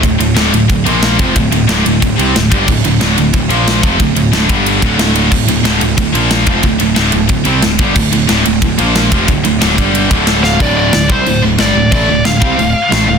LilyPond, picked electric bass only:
\new Staff \with { instrumentName = "Picked electric bass" } { \clef bass \time 4/4 \key d \minor \tempo 4 = 182 d,,8 d,,8 d,,8 d,,8 d,,8 bes,,4 f,,8 | d,,8 d,,8 d,,8 d,,8 d,,8 c,8 d,,8 g,,8 | d,,8 d,,8 d,,8 d,,8 d,,8 bes,,4 f,,8 | d,,8 d,,8 d,,8 g,,4 d,,4. |
d,,8 d,,8 d,,8 d,,8 d,,8 bes,,4 f,,8 | d,,8 d,,8 d,,8 d,,8 d,,8 c,8 d,,8 g,,8 | d,,8 d,,8 d,,8 d,,8 d,,8 bes,,4 f,,8 | d,,8 d,,8 d,,8 g,,4 d,,4. |
d,,4 d,,8 c,8 d,,8 d,,8 g,,8 d,,8 | a,,8 d,,8 d,,8 c,8 d,,8 r8 a,,8 d,,8 | }